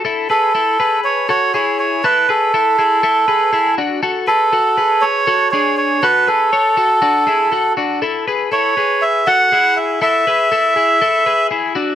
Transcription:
<<
  \new Staff \with { instrumentName = "Melodica" } { \time 4/4 \key a \major \tempo 4 = 120 r8 a'4. cis''8 cis''8 cis''8 cis''8 | b'8 a'2. r8 | r8 a'4. cis''4 cis''8 cis''8 | b'8 a'2. r8 |
r4 cis''4 e''8 fis''4 e''8 | e''2. r4 | }
  \new Staff \with { instrumentName = "Clean electric guitar" } { \time 4/4 \key a \major <e' a'>8 <gis' b'>8 <e' a'>8 <gis' b'>4 <fis' a'>8 <e' gis'>4 | <e' a'>8 <gis' b'>8 <e' a'>8 <e' gis'>8 <e' a'>8 <gis' b'>8 <e' gis'>8 <d' fis'>8 | <fis' a'>8 <gis' b'>8 <fis' a'>8 <gis' b'>4 <fis' a'>8 <d' gis'>4 | <fis' a'>8 <gis' b'>8 <a' cis''>8 <fis' a'>8 <d' fis'>8 <e' gis'>8 <fis' a'>8 <d' fis'>8 |
<e' a'>8 <gis' b'>8 <e' a'>8 <gis' b'>4 <fis' a'>8 <e' gis'>4 | <e' a'>8 <gis' b'>8 <e' a'>8 <e' gis'>8 <e' a'>8 <gis' b'>8 <e' gis'>8 <d' fis'>8 | }
>>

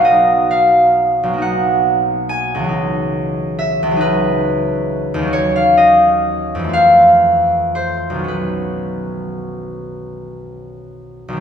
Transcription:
<<
  \new Staff \with { instrumentName = "Harp" } { \time 6/8 \key cis \mixolydian \tempo 4. = 43 <dis'' eis''>8 eis''4 fis''4 gis''8~ | gis''4 e''8 b'4. | cis''16 eis''16 dis''4 f''4 c''8 | b'2. | }
  \new Staff \with { instrumentName = "Harp" } { \clef bass \time 6/8 \key cis \mixolydian <b,, fis ais b dis'>4. <b,, fis ais dis'>4. | <cis, e fis dis'>4. <cis, e fis dis'>4. | <dis, dis fis cis'>4. <f, e a c'>4. | <b,, dis fis cis'>2. | }
>>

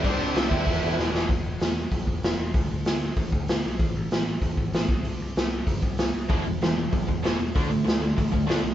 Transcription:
<<
  \new Staff \with { instrumentName = "Lead electric guitar" } { \time 4/4 \key e \minor \tempo 4 = 192 <d' d''>4. <e' e''>4. r4 | r1 | r1 | r1 |
r1 | r1 | r1 | }
  \new Staff \with { instrumentName = "Overdriven electric guitar" } { \clef bass \time 4/4 \key e \minor <c g c'>4. <c g c'>8 <e, b, e>4. <e, b, e>8 | r1 | r1 | r1 |
r1 | <e, b, e>8 <e, b,>8 <e, b,>8 <e, b,>8 <e, b,>8 <e, b,>8 <e, b, e>8 <e, b,>8 | <d a d'>8 <d a>8 <d a>8 <d a>8 <d a>8 <d a>8 <d a d'>8 <d a>8 | }
  \new Staff \with { instrumentName = "Picked electric bass" } { \clef bass \time 4/4 \key e \minor c,8 c,8 c,8 dis,8 e,,8 e,,8 e,,8 e,,8 | e,,8 e,,8 e,,4 b,,8 e,,8 e,,8 e,,8 | d,8 d,8 d,4 a,,8 d,8 d,8 b,,8 | a,,8 a,,8 a,,4 e,,8 a,,8 a,,8 c,8 |
c,8 c,8 c,4 g,,8 c,8 c,8 c,8 | e,,8 e,,8 e,,4 b,,8 e,,8 e,,8 e,,8 | d,8 d,8 d,4 a,,8 d,8 d,8 b,,8 | }
  \new DrumStaff \with { instrumentName = "Drums" } \drummode { \time 4/4 <cymc bd>8 cymc8 <cymc sn>8 <cymc bd>8 <cymc bd>8 cymc8 sn8 sn8 | <hho bd>4 <hho sn>4 <hho bd>8 bd8 <hho sn>4 | <hho bd>4 <hho sn>4 <hho bd>8 bd8 <hho sn>4 | <hho bd>4 <hho sn>4 <hho bd>8 bd8 <hho sn>8 bd8 |
hho4 <hho sn>4 <hho bd>8 bd8 <hho sn>4 | <hho bd>4 <hho sn>4 <hho bd>8 bd8 <hho sn>4 | <hho bd>4 <hho sn>4 <hho bd>8 bd8 <hho sn>4 | }
>>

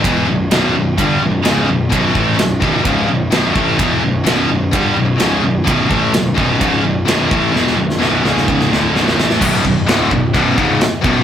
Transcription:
<<
  \new Staff \with { instrumentName = "Distorted electric guitar" } { \clef bass \time 4/4 \key b \minor \tempo 4 = 128 <e, b, e>8 <b,, fis,>8 <b,, fis, b,>8 <b,, fis,>8 <g, d g>8 <b,, fis,>8 <cis, gis, cis>8 <b,, fis,>8 | <b,, fis, b,>8 <a, e a>8 <b,, fis,>8 <b,, fis, b,>8 <cis, gis, cis>8 <b,, fis,>8 <b,, fis, b,>8 <a, e a>8 | <e, b, e>8 <b,, fis,>8 <b,, fis, b,>8 <b,, fis,>8 <g, d g>8 <b,, fis,>8 <cis, gis, cis>8 <b,, fis,>8 | <b,, fis, b,>8 <a, e a>8 <b,, fis,>8 <b,, fis, b,>8 <cis, gis, cis>8 <b,, fis,>8 <b,, fis, b,>8 <a, e a>8 |
<e, b, e>8 <b,, fis,>8 <b,, fis, b,>8 <cis, gis, cis>4 <d, a, d>8 <b,, fis, b,>8 <a, e a>8 | <b,, fis, b,>8 <b,, fis,>8 <d, a, d>8 <b,, fis,>8 <b,, fis, b,>8 <cis, gis, cis>8 r8 <b,, fis, b,>8 | }
  \new Staff \with { instrumentName = "Distorted electric guitar" } { \clef bass \time 4/4 \key b \minor <e, b, e>8 <b,, fis,>8 <b,, fis, b,>8 <b,, fis,>8 <g, d g>8 <b,, fis,>8 <cis, gis, cis>8 <b,, fis,>8 | <b,, fis, b,>8 <a, e a>8 <b,, fis,>8 <b,, fis, b,>8 <cis, gis, cis>8 <b,, fis,>8 <b,, fis, b,>8 <a, e a>8 | <e, b, e>8 <b,, fis,>8 <b,, fis, b,>8 <b,, fis,>8 <g, d g>8 <b,, fis,>8 <cis, gis, cis>8 <b,, fis,>8 | <b,, fis, b,>8 <a, e a>8 <b,, fis,>8 <b,, fis, b,>8 <cis, gis, cis>8 <b,, fis,>8 <b,, fis, b,>8 <a, e a>8 |
<e, b, e>8 <b,, fis,>8 <b,, fis, b,>8 <cis, gis, cis>4 <d, a, d>8 <b,, fis, b,>8 <a, e a>8 | r1 | }
  \new Staff \with { instrumentName = "Distorted electric guitar" } { \clef bass \time 4/4 \key b \minor r1 | r1 | r1 | r1 |
r1 | <b,, fis, b,>8 <b,, fis,>8 <d, a, d>8 <b,, fis,>8 <b,, fis, b,>8 <cis, gis, cis>8 r8 <b,, fis, b,>8 | }
  \new Staff \with { instrumentName = "Picked electric bass" } { \clef bass \time 4/4 \key b \minor e,,8 b,,,8 b,,,8 b,,,8 g,,8 b,,,8 cis,,8 b,,,8 | b,,,8 a,,8 b,,,8 b,,,8 cis,,8 b,,,8 b,,,8 a,,8 | e,,8 b,,,8 b,,,8 b,,,8 g,,8 b,,,8 cis,,8 b,,,8 | b,,,8 a,,8 b,,,8 b,,,8 cis,,8 b,,,8 b,,,8 a,,8 |
e,,8 b,,,8 b,,,8 cis,,4 d,,8 b,,,8 a,,8 | b,,,8 b,,,8 d,,8 b,,,8 b,,,8 cis,,8 r8 b,,,8 | }
  \new DrumStaff \with { instrumentName = "Drums" } \drummode { \time 4/4 <bd rb>4 <rb sn>4 <bd rb>4 <rb sn>4 | <bd rb>8 bd8 <rb sn>8 bd8 <bd rb>4 <rb sn>8 bd8 | <bd rb>4 <rb sn>4 <bd rb>4 <rb sn>4 | <bd rb>8 bd8 <rb sn>8 bd8 <bd rb>4 <rb sn>8 bd8 |
sn16 sn8 sn16 sn8 sn16 sn16 bd16 sn16 sn8 sn16 sn16 sn16 sn16 | <cymc bd>8 bd8 <cymc sn>8 bd8 <cymc bd>8 bd8 <cymc sn>8 bd8 | }
>>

